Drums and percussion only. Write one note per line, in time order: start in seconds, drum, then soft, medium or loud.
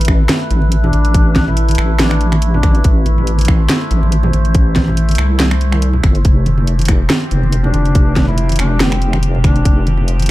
0.01 closed hi-hat medium
0.05 finger snap medium
0.05 kick loud
0.05 closed hi-hat medium
0.05 high bongo soft
0.29 snare loud
0.29 closed hi-hat medium
0.29 high conga loud
0.51 closed hi-hat medium
0.51 high bongo medium
0.62 high conga medium
0.72 closed hi-hat medium
0.84 high bongo medium
0.84 low conga medium
0.93 closed hi-hat medium
0.93 high conga medium
1.05 closed hi-hat soft
1.14 kick loud
1.14 closed hi-hat medium
1.36 kick medium
1.36 snare medium
1.36 closed hi-hat medium
1.36 high conga medium
1.48 high bongo soft
1.48 low conga medium
1.57 closed hi-hat medium
1.69 closed hi-hat soft
1.69 high conga medium
1.71 closed hi-hat medium
1.75 finger snap medium
1.75 closed hi-hat medium
1.75 high bongo medium
1.99 snare loud
1.99 closed hi-hat medium
1.99 high conga medium
2.11 finger snap medium
2.21 closed hi-hat medium
2.32 finger snap medium
2.32 high conga medium
2.42 closed hi-hat medium
2.54 low conga medium
2.63 finger snap medium
2.63 kick loud
2.63 closed hi-hat medium
2.63 high conga loud
2.75 closed hi-hat soft
2.84 kick loud
2.84 closed hi-hat medium
3.06 closed hi-hat medium
3.06 high conga medium
3.18 low conga medium
3.27 closed hi-hat medium
3.38 closed hi-hat soft
3.38 high conga medium
3.41 closed hi-hat medium
3.45 finger snap medium
3.45 kick loud
3.45 closed hi-hat medium
3.45 high bongo soft
3.69 snare loud
3.69 closed hi-hat medium
3.69 high conga medium
3.91 closed hi-hat medium
3.91 high bongo soft
4.03 high conga medium
4.12 closed hi-hat medium
4.23 high bongo medium
4.23 low conga medium
4.33 closed hi-hat medium
4.33 high conga loud
4.45 closed hi-hat soft
4.55 kick loud
4.55 closed hi-hat medium
4.76 kick medium
4.76 snare medium
4.76 closed hi-hat soft
4.76 high conga medium
4.87 high bongo soft
4.87 low conga medium
4.97 closed hi-hat medium
5.09 closed hi-hat soft
5.09 high conga medium
5.11 closed hi-hat medium
5.15 finger snap medium
5.15 closed hi-hat medium
5.15 high bongo soft
5.40 snare loud
5.40 closed hi-hat medium
5.40 high conga medium
5.51 finger snap medium
5.61 closed hi-hat medium
5.72 finger snap medium
5.72 high conga medium
5.82 closed hi-hat medium
5.93 low conga medium
6.04 finger snap medium
6.04 kick loud
6.04 closed hi-hat medium
6.04 high conga medium
6.15 closed hi-hat soft
6.25 kick loud
6.25 closed hi-hat medium
6.46 closed hi-hat soft
6.46 high conga loud
6.58 low conga medium
6.67 closed hi-hat medium
6.79 closed hi-hat soft
6.79 high conga medium
6.81 closed hi-hat medium
6.85 finger snap medium
6.85 kick loud
6.85 closed hi-hat medium
6.85 open hi-hat medium
6.85 high bongo soft
7.10 snare loud
7.10 closed hi-hat medium
7.10 high conga medium
7.31 closed hi-hat soft
7.31 high bongo medium
7.43 high conga medium
7.52 closed hi-hat medium
7.64 high bongo medium
7.64 low conga medium
7.74 closed hi-hat medium
7.74 high conga medium
7.85 closed hi-hat soft
7.95 kick loud
7.95 closed hi-hat medium
8.16 kick medium
8.16 snare medium
8.16 closed hi-hat soft
8.16 high conga loud
8.28 high bongo soft
8.28 low conga medium
8.38 closed hi-hat medium
8.49 closed hi-hat soft
8.49 high conga medium
8.52 closed hi-hat medium
8.56 finger snap medium
8.56 closed hi-hat medium
8.56 open hi-hat loud
8.56 high bongo soft
8.80 snare loud
8.80 closed hi-hat medium
8.80 high conga medium
8.92 finger snap medium
9.02 closed hi-hat medium
9.13 finger snap medium
9.13 high conga medium
9.23 closed hi-hat medium
9.35 low conga medium
9.44 finger snap medium
9.44 kick loud
9.44 closed hi-hat medium
9.44 high conga medium
9.56 closed hi-hat soft
9.65 kick loud
9.65 closed hi-hat medium
9.87 closed hi-hat soft
9.87 high conga medium
9.98 low conga medium
10.08 closed hi-hat medium
10.20 closed hi-hat soft
10.20 high conga medium
10.22 closed hi-hat medium
10.26 closed hi-hat medium